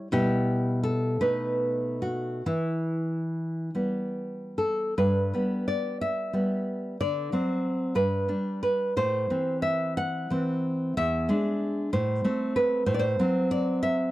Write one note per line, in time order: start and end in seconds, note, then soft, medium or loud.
0.12 1.19 B2 medium
0.12 1.18 G3 soft
0.12 1.18 E4 soft
0.12 0.81 G4 medium
0.83 1.20 A4 medium
1.21 2.41 B2 soft
1.21 2.41 A3 soft
1.21 2.41 D#4 soft
1.21 1.98 B4 medium
2.02 2.43 F#4 medium
2.46 3.70 E3 medium
2.46 3.69 E4 medium
3.75 4.93 G3 soft
3.75 4.93 B3 soft
4.58 4.95 A4 medium
4.98 5.31 G2 medium
4.98 5.64 B4 medium
5.34 6.31 G3 soft
5.34 6.31 B3 soft
5.68 5.99 D5 medium
6.01 6.97 E5 medium
6.33 6.96 G3 soft
6.33 6.96 B3 soft
7.01 7.32 D3 medium
7.01 7.94 D5 medium
7.32 7.93 F#3 soft
7.32 7.93 C4 soft
7.95 8.28 G2 soft
7.95 8.60 B4 medium
8.28 8.92 G3 soft
8.28 8.92 D4 soft
8.63 8.95 B4 medium
8.97 9.30 A2 medium
8.97 9.62 C5 medium
9.30 10.28 E3 soft
9.30 10.28 C4 soft
9.62 9.96 E5 medium
9.97 10.93 F#5 medium
10.30 10.93 E3 soft
10.30 10.93 C4 soft
10.97 11.29 E2 medium
10.97 11.90 E5 medium
11.29 11.89 G#3 soft
11.29 11.90 D4 soft
11.93 12.24 A2 medium
11.93 12.54 C5 medium
12.25 12.84 A3 soft
12.25 12.84 C4 medium
12.56 12.86 B4 medium
12.86 13.18 A2 medium
12.86 12.94 C5 medium
12.94 13.01 D5 medium
12.99 13.48 C5 medium
13.19 14.11 F#3 soft
13.19 14.11 C4 medium
13.51 13.81 D5 medium
13.83 14.11 E5 medium